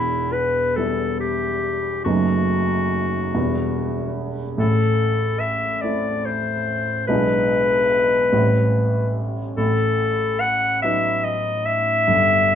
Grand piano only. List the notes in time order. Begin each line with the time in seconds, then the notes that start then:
Already playing: E1 E2
0.77 G3 B3 E4
2.05 F#1 F#2 A3 B3 D#4
3.34 E1 E2 G3 B3 E4
4.57 A1 A2
5.83 A3 C4 E4
7.08 B1 B2 G#3 D4 E4
8.32 A1 A2 G3 C4 E4
9.57 A1 A2
10.84 F#3 B3 D#4
12.07 G1 G2